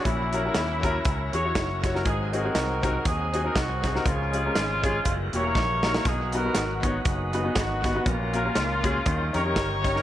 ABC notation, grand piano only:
X:1
M:4/4
L:1/16
Q:"Swing" 1/4=120
K:F#
V:1 name="Grand piano"
z2 [C=EFA] [CEFA] z2 [CEFA] z3 [CEFG] [CEFc] z2 [CEFc] [CEFA] | z2 [^B,DFG] [B,DFG] z2 [B,DFA] z3 [B,DFG] [B,DFA] z2 [B,DFG] [B,DFA] | z2 [G,CEG] [G,CEA] z2 [G,CEG] z3 [A,=EF=G] [A,EFA] z2 [A,EFA] [A,EFA] | z2 [B,DFB] [B,DFB] z2 [B,DFc] z3 [B,DFB] [B,DFB] z2 [B,DFB] [B,DFB] |
z2 [A,CFA] [A,CFA] z2 [A,CFG] z3 [CD=GA] [CDGA] z2 [CDGc] [CDGA] |]
V:2 name="Grand piano" clef=bass
A,,6 z8 z2 | G,,6 z8 z2 | C,6 z8 z2 | B,,6 z8 z2 |
A,,6 z2 D,6 z2 |]